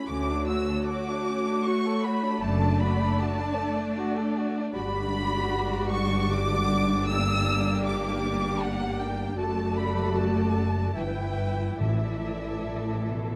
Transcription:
0.07 cello section D2, double bass section D2, viola section A3 F#4, violin section C#4 C#5 D6
0.29 violin section D4
0.47 violin section F#4 E6
0.69 violin section A4
0.87 violin section F#4 D6
1.08 violin section D4
1.28 violin section C#4
1.47 violin section D4
1.64 violin section F#4 C#6
1.85 violin section A4
2.02 violin section F#4 B5
2.23 violin section D4
2.42 double bass section F#1, cello section F#2, violin section A3 D5 A5, viola section D4
2.62 violin section D4
2.80 violin section F#4 B5
3.00 violin section A4
3.19 violin section F#4 A5
3.37 violin section D4
3.57 violin section A3
3.77 violin section D4
3.97 violin section F#4
4.17 violin section A4
4.37 violin section F#4
4.57 violin section D4
4.74 double bass section G1, cello section G2, viola section G3 D4, violin section F#4 D5 B5
5.92 violin section C#6
6.30 violin section D6
7.07 viola section A#3, violin section G4 E6
7.86 violin section D6
8.62 violin section F#5
9.00 violin section G5
9.37 double bass section F#1, cello section F#2, viola section A3 F#4, violin section A4 D5 A5
9.77 violin section B5
10.15 violin section A5
10.96 double bass section G1, cello section G2, viola section E3 E4, violin section B4 E5 G5
11.80 double bass section A1, timpani A2, cello section A2, violin section A4 D5 E5
12.67 cello section A2
13.10 cello section B2

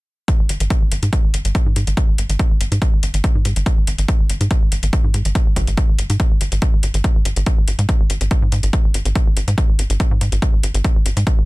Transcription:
0.28 kick, closed hi-hat
0.39 analog synth bass G#1
0.49 analog synth bass G#1, closed hi-hat
0.60 analog synth bass G#1, closed hi-hat
0.70 kick, closed hi-hat
0.82 analog synth bass G#1
0.91 analog synth bass G#1, closed hi-hat
1.03 analog synth bass G#2, closed hi-hat
1.13 kick, closed hi-hat
1.24 analog synth bass G#1
1.34 analog synth bass G#1, closed hi-hat
1.45 analog synth bass G#1, closed hi-hat
1.55 kick, closed hi-hat
1.66 analog synth bass G#2
1.76 analog synth bass G#2, closed hi-hat
1.87 analog synth bass G#1, closed hi-hat
1.97 kick, closed hi-hat
2.08 analog synth bass G#1
2.18 analog synth bass G#1, closed hi-hat
2.29 analog synth bass G#1, closed hi-hat
2.39 kick, closed hi-hat
2.50 analog synth bass G#1
2.60 analog synth bass G#1, closed hi-hat
2.72 analog synth bass G#2, closed hi-hat
2.82 kick, closed hi-hat
2.93 analog synth bass G#1
3.03 analog synth bass G#1, closed hi-hat
3.14 analog synth bass G#1, closed hi-hat
3.24 kick, closed hi-hat
3.35 analog synth bass G#2
3.45 analog synth bass G#2, closed hi-hat
3.56 analog synth bass G#1, closed hi-hat
3.66 kick, closed hi-hat
3.77 analog synth bass G#1
3.87 analog synth bass G#1, closed hi-hat
3.98 analog synth bass G#1, closed hi-hat
4.08 kick, closed hi-hat
4.19 analog synth bass G#1
4.29 analog synth bass G#1, closed hi-hat
4.41 analog synth bass G#2, closed hi-hat
4.51 kick, closed hi-hat
4.62 analog synth bass G#1
4.72 analog synth bass G#1, closed hi-hat
4.83 analog synth bass G#1, closed hi-hat
4.93 kick, closed hi-hat
5.04 analog synth bass G#2
5.14 analog synth bass G#2, closed hi-hat
5.25 analog synth bass G#1, closed hi-hat
5.35 kick, closed hi-hat
5.46 analog synth bass G#1
5.56 analog synth bass G#1, kick, closed hi-hat
5.67 analog synth bass G#1, closed hi-hat
5.77 kick, closed hi-hat
5.88 analog synth bass G#1
5.99 analog synth bass G#1, closed hi-hat
6.10 analog synth bass G#2, closed hi-hat
6.20 kick, closed hi-hat
6.31 analog synth bass G#1
6.41 analog synth bass G#1, closed hi-hat
6.52 analog synth bass G#1, closed hi-hat
6.62 kick, closed hi-hat
6.73 analog synth bass G#1
6.83 analog synth bass G#1, closed hi-hat
6.94 analog synth bass G#1, closed hi-hat
7.04 kick, closed hi-hat
7.15 analog synth bass G#1
7.25 analog synth bass G#1, closed hi-hat
7.36 analog synth bass G#1, closed hi-hat
7.46 kick, closed hi-hat
7.57 analog synth bass G#1
7.67 analog synth bass G#1, closed hi-hat
7.79 analog synth bass G#2, closed hi-hat
7.89 kick, closed hi-hat
8.00 analog synth bass G#1
8.10 analog synth bass G#1, closed hi-hat
8.21 analog synth bass G#1, closed hi-hat
8.31 kick, closed hi-hat
8.42 analog synth bass G#2
8.52 analog synth bass G#2, closed hi-hat
8.63 analog synth bass G#1, closed hi-hat
8.73 kick, closed hi-hat
8.84 analog synth bass G#1
8.94 analog synth bass G#1, closed hi-hat
9.05 analog synth bass G#1, closed hi-hat
9.15 kick, closed hi-hat
9.26 analog synth bass G#1
9.36 analog synth bass G#1, closed hi-hat
9.47 analog synth bass G#2, closed hi-hat
9.58 kick, closed hi-hat
9.69 analog synth bass G#1
9.79 analog synth bass G#1, closed hi-hat
9.90 analog synth bass G#1, closed hi-hat
10.00 kick, closed hi-hat
10.11 analog synth bass G#2
10.21 analog synth bass G#2, closed hi-hat
10.32 analog synth bass G#1, closed hi-hat
10.42 kick, closed hi-hat
10.53 analog synth bass G#1
10.63 analog synth bass G#1, closed hi-hat
10.74 analog synth bass G#1, closed hi-hat
10.84 kick, closed hi-hat
10.95 analog synth bass G#1
11.05 analog synth bass G#1, closed hi-hat
11.17 analog synth bass G#2, closed hi-hat
11.27 kick, closed hi-hat
11.38 analog synth bass G#1

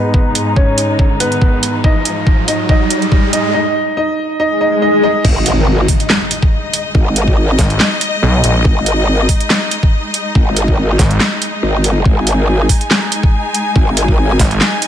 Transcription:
Already playing: string section G#2 G#3 D#4, grand piano B3 B4, riser
0.14 kick
0.35 closed hi-hat
0.56 grand piano C#4 C#5, kick
0.78 closed hi-hat
0.99 kick
1.20 grand piano B3 B4, closed hi-hat
1.32 closed hi-hat
1.42 kick
1.63 closed hi-hat
1.84 grand piano D#4 D#5, kick
2.05 closed hi-hat
2.27 kick
2.48 grand piano D#4 D#5, closed hi-hat
2.69 grand piano D#4 D#5, kick
2.90 closed hi-hat
3.02 closed hi-hat
3.12 kick
3.33 grand piano D#4 D#5, closed hi-hat
3.54 grand piano D#4 D#5
3.97 grand piano D#4 D#5
4.39 grand piano D#4 D#5, swell
4.61 grand piano D#4 D#5
4.82 grand piano D#4 D#5
5.03 grand piano D#4 D#5
5.25 wobble bass G#1, string section G#3 D#4 D#5, kick, crash, impact
5.46 closed hi-hat
5.88 kick, open hi-hat
6.00 closed hi-hat
6.10 snare, clap
6.31 closed hi-hat
6.43 kick
6.73 closed hi-hat
6.95 wobble bass G#1, kick
7.16 closed hi-hat
7.28 kick
7.59 detuned saw bass G#1, kick, snare, open hi-hat
7.70 closed hi-hat
7.80 snare, clap
8.01 closed hi-hat
8.22 detuned saw bass B1
8.44 detuned saw bass A#1, closed hi-hat
8.65 wobble bass G#1, kick
8.86 closed hi-hat
9.29 kick, open hi-hat
9.40 closed hi-hat
9.50 snare, clap
9.71 closed hi-hat
9.83 kick
10.14 closed hi-hat
10.35 wobble bass G#1, kick
10.56 closed hi-hat
10.68 kick
10.99 detuned saw bass G#1, kick, snare, open hi-hat
11.11 closed hi-hat
11.20 snare, clap
11.42 closed hi-hat
11.63 wobble bass G#1
11.84 closed hi-hat
12.05 wobble bass G#1, string section G#5, kick
12.27 closed hi-hat
12.69 kick, open hi-hat
12.81 closed hi-hat
12.91 snare, clap
13.12 closed hi-hat
13.23 kick
13.54 closed hi-hat
13.76 wobble bass G#1, kick
13.97 closed hi-hat
14.08 kick
14.39 detuned saw bass G#1, kick, snare, open hi-hat
14.51 closed hi-hat
14.61 snare, clap
14.82 closed hi-hat

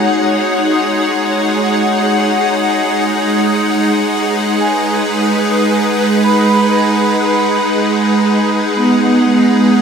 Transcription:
Already playing: ambient pad G#3 D#4 G#4 C#5 F#5, vibraphone F#4
0.59 vibraphone D#4
3.97 ambient pad B4
4.61 vibraphone G#5
6.24 vibraphone B5
8.77 vibraphone B3

